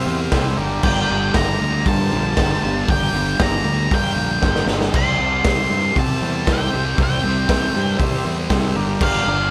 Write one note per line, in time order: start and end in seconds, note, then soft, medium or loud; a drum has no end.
0.00 0.20 G4 loud
0.00 0.20 C5 medium
0.00 0.21 E5 loud
0.00 0.55 F5 medium
0.06 0.27 E2 loud
0.06 0.31 C3 medium
0.06 0.32 G3 medium
0.06 0.32 C4 loud
0.31 0.53 C2 loud
0.31 0.56 C3 loud
0.31 0.58 G3 medium
0.31 0.57 C4 loud
0.31 0.54 G4 loud
0.31 0.58 C5 medium
0.31 0.58 E5 loud
0.31 kick loud
0.31 snare loud
0.31 open hi-hat medium
0.56 0.78 G1 medium
0.56 0.82 G2 loud
0.56 0.82 D3 loud
0.56 0.83 G3 loud
0.56 1.18 G4 loud
0.56 1.19 A#4 medium
0.56 1.19 D5 loud
0.83 1.05 G1 loud
0.83 1.08 G2 loud
0.83 1.08 D3 loud
0.83 1.10 G3 loud
0.83 1.37 G5 loud
0.83 kick loud
0.83 crash loud
1.08 1.30 G1 medium
1.08 1.34 G2 medium
1.08 1.34 D3 loud
1.08 1.35 G3 loud
1.34 1.56 G1 medium
1.34 1.59 G2 medium
1.34 1.59 D3 medium
1.34 1.60 G3 loud
1.34 1.74 G4 medium
1.34 1.74 A#4 medium
1.34 1.75 D5 medium
1.34 1.87 A#5 loud
1.34 kick loud
1.34 snare loud
1.34 open hi-hat medium
1.60 1.82 D2 medium
1.60 1.85 G2 loud
1.60 1.86 D3 loud
1.60 1.87 G3 loud
1.86 2.07 G2 loud
1.86 2.11 G2 medium
1.86 2.12 D3 medium
1.86 2.14 G3 loud
1.86 2.25 G4 medium
1.86 2.26 A#4 medium
1.86 2.26 C5 medium
1.86 2.93 A5 loud
1.86 kick loud
1.86 open hi-hat medium
2.13 2.34 A#1 medium
2.13 2.36 G2 medium
2.13 2.36 D3 medium
2.13 2.38 G3 loud
2.37 2.59 G1 loud
2.37 2.62 G2 medium
2.37 2.63 D3 medium
2.37 2.64 G3 loud
2.37 2.77 G4 medium
2.37 2.77 A#4 medium
2.37 2.78 C5 medium
2.37 kick loud
2.37 snare loud
2.37 open hi-hat medium
2.63 2.84 G1 medium
2.63 2.88 G2 medium
2.63 2.89 D3 medium
2.63 2.90 G3 loud
2.86 3.10 G1 loud
2.86 3.13 G2 loud
2.86 3.26 G4 medium
2.86 3.27 A#4 medium
2.86 3.28 D5 medium
2.86 kick loud
2.86 open hi-hat medium
2.90 3.14 D3 loud
2.90 3.16 G3 loud
2.90 3.42 G5 medium
3.13 3.34 G1 medium
3.13 3.39 G2 medium
3.13 3.39 D3 medium
3.13 3.41 G3 medium
3.38 3.61 G1 medium
3.38 3.64 G2 loud
3.38 3.65 D3 loud
3.38 3.66 G3 medium
3.38 3.78 G4 medium
3.38 3.79 A#4 medium
3.38 3.79 D5 medium
3.38 kick loud
3.38 snare loud
3.38 open hi-hat medium
3.42 3.94 A#5 loud
3.64 3.86 D2 medium
3.64 3.90 G2 loud
3.64 3.91 D3 loud
3.64 3.92 G3 loud
3.91 4.12 G2 medium
3.91 4.17 G2 medium
3.91 4.17 D3 medium
3.91 4.19 G3 loud
3.91 4.30 G4 medium
3.91 4.31 A#4 medium
3.91 4.32 F5 medium
3.91 4.66 G5 medium
3.91 kick loud
3.91 open hi-hat medium
4.16 4.38 A#1 medium
4.16 4.41 G2 loud
4.16 4.42 D3 loud
4.16 4.43 G3 loud
4.42 4.64 G1 loud
4.42 4.68 G2 medium
4.42 4.68 D3 medium
4.42 4.70 G3 medium
4.42 4.82 G4 medium
4.42 4.82 A#4 medium
4.42 4.83 C5 medium
4.42 kick loud
4.42 snare medium
4.55 snare medium
4.66 4.88 G1 medium
4.66 4.93 G2 medium
4.66 4.93 D3 medium
4.66 snare loud
4.70 4.95 G3 medium
4.81 snare medium
4.94 5.15 C2 medium
4.94 5.19 C3 loud
4.94 5.20 G3 loud
4.94 5.20 C4 loud
4.94 5.33 G4 medium
4.94 5.34 C5 medium
4.94 5.35 E5 medium
4.94 5.48 C6 loud
4.94 kick loud
4.94 crash loud
5.19 5.40 C2 medium
5.19 5.44 C3 medium
5.19 5.45 G3 medium
5.19 5.46 C4 medium
5.45 5.66 C2 loud
5.45 5.70 C3 loud
5.45 5.72 G3 loud
5.45 5.72 C4 loud
5.45 5.84 G4 medium
5.45 5.84 C5 medium
5.45 5.85 E5 medium
5.45 kick loud
5.45 snare loud
5.45 open hi-hat medium
5.49 5.99 C6 loud
5.70 5.91 G2 medium
5.70 5.96 C3 medium
5.70 5.97 G3 loud
5.70 5.96 C4 loud
5.96 6.17 C3 medium
5.96 6.21 C3 medium
5.96 6.22 G3 medium
5.96 6.23 C4 medium
5.96 6.35 G4 medium
5.96 6.36 C5 medium
5.96 6.36 E5 medium
5.96 6.50 A5 medium
5.96 kick loud
5.96 open hi-hat medium
6.21 6.42 E2 medium
6.21 6.47 C3 medium
6.21 6.48 G3 loud
6.21 6.48 C4 loud
6.45 6.68 C2 loud
6.45 6.73 C3 medium
6.45 6.75 G3 medium
6.45 6.75 C4 loud
6.45 6.85 G4 medium
6.45 6.86 C5 medium
6.45 6.86 E5 medium
6.45 kick loud
6.45 snare loud
6.45 open hi-hat medium
6.52 6.97 G5 medium
6.74 6.94 C2 medium
6.74 6.96 C3 medium
6.74 6.98 G3 medium
6.74 6.99 C4 loud
6.96 7.19 C2 loud
6.96 7.24 C3 loud
6.96 7.25 G3 loud
6.96 7.25 C4 loud
6.96 7.36 G4 medium
6.96 7.37 C5 medium
6.96 7.37 E5 medium
6.96 kick loud
6.96 open hi-hat medium
7.03 7.98 G5 medium
7.24 7.45 C2 medium
7.24 7.48 C3 medium
7.24 7.50 G3 medium
7.24 7.49 C4 medium
7.45 7.70 C2 loud
7.45 7.74 C3 medium
7.45 7.86 G4 medium
7.45 7.87 C5 medium
7.45 7.87 E5 medium
7.45 kick loud
7.45 snare loud
7.49 7.75 G3 medium
7.49 7.76 C4 loud
7.49 open hi-hat medium
7.74 7.95 G2 medium
7.74 7.98 C3 loud
7.74 8.00 G3 medium
7.74 7.99 C4 loud
7.97 8.23 C3 medium
7.97 8.21 C3 loud
7.97 8.25 G3 loud
7.97 8.24 C4 medium
7.97 8.37 G4 loud
7.97 8.38 C5 medium
7.97 8.38 E5 loud
7.97 kick loud
7.97 open hi-hat medium
8.25 8.46 E2 medium
8.25 8.49 C3 medium
8.25 8.51 G3 medium
8.25 8.50 C4 loud
8.49 8.71 C2 loud
8.49 8.74 C3 medium
8.49 8.77 G3 loud
8.49 8.75 C4 loud
8.49 8.73 G4 loud
8.49 8.75 C5 medium
8.49 8.76 E5 loud
8.49 kick loud
8.49 snare loud
8.49 open hi-hat medium
8.74 8.96 G1 medium
8.74 9.01 G2 loud
8.74 9.01 D3 loud
8.74 9.02 G3 loud
8.74 9.36 G4 loud
8.74 9.37 A#4 loud
8.74 9.37 D5 loud
9.01 9.22 G1 loud
9.01 9.25 G2 loud
9.01 9.25 D3 loud
9.01 9.26 G3 loud
9.01 9.51 F5 loud
9.01 kick loud
9.01 crash loud
9.26 9.47 G1 loud
9.26 9.51 G2 medium
9.26 9.51 D3 loud
9.26 9.51 G3 medium